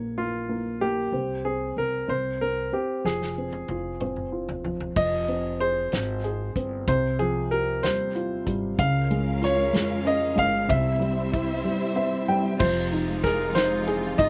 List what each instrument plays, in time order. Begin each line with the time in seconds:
Already playing: upright bass A#1, upright piano A#3
0.18 upright piano A#3, grand piano F4
0.49 upright piano A#3
0.81 upright piano A#3, grand piano G4
1.12 upright bass C2, upright piano C4
1.45 upright piano C4, grand piano G#4
1.77 upright bass C2, upright piano C4, grand piano A#4
2.08 upright bass C2, upright piano C4, grand piano C5
2.41 upright piano C4, grand piano A#4
2.73 upright piano C4, grand piano G4
3.04 upright bass F1, upright piano F3, grand piano G#4, snare
3.22 snare
3.38 upright piano C4
3.52 high tom
3.68 upright bass F1, upright piano F4, high tom
4.01 upright piano C4, mid tom
4.16 mid tom
4.32 upright piano F4
4.49 floor tom
4.64 upright piano F3, floor tom
4.80 floor tom
4.96 upright bass F1, upright piano F3, grand piano D#5, kick, crash
5.28 upright piano C4, closed hi-hat
5.60 upright piano G#4, grand piano C5, closed hi-hat
5.92 upright bass G#1, upright piano C4, snare, closed hi-hat
6.24 upright piano G#4, closed hi-hat
6.56 upright bass G1, upright piano C4, kick, closed hi-hat
6.88 upright bass C2, upright piano C3, grand piano C5, kick, closed hi-hat
7.19 upright piano F3, grand piano G#4, closed hi-hat
7.51 upright piano G4, grand piano A#4, closed hi-hat
7.83 upright bass D#2, upright piano G3, grand piano C5, snare, closed hi-hat
8.15 upright piano F4, closed hi-hat
8.46 upright bass G#1, upright piano G3, kick, closed hi-hat
8.78 upright bass C#2, upright piano C#3, string section G#3 C#4 F4 A#4 F5, grand piano F5, kick, closed hi-hat
9.11 upright piano G#3, closed hi-hat
9.42 upright piano F4, grand piano C#5, snare, closed hi-hat
9.73 upright bass F2, upright piano G#3, snare, closed hi-hat
10.05 upright piano C#4, grand piano D#5, closed hi-hat
10.35 upright bass G1, upright piano G#3, grand piano F5, kick, closed hi-hat
10.68 upright bass C2, upright piano C3, string section G3 C4 E4 C5 E5, grand piano E5, kick, closed hi-hat
10.99 upright piano G3, closed hi-hat
11.31 upright piano E4, kick, closed hi-hat
11.64 upright piano G3
11.96 upright piano C4 E5
12.28 upright piano G3 G5
12.59 upright bass F1, string section C3 F3 G#3 D#4 F4, upright piano F3, grand piano C5, kick, crash
12.92 upright piano D#4, ride
13.23 upright piano G#4, grand piano A#4, kick, snare, ride
13.55 upright piano D#4, grand piano C5, snare, ride
13.87 upright piano G#4, ride
14.18 upright bass G1, upright piano D#4, grand piano D#5, kick, ride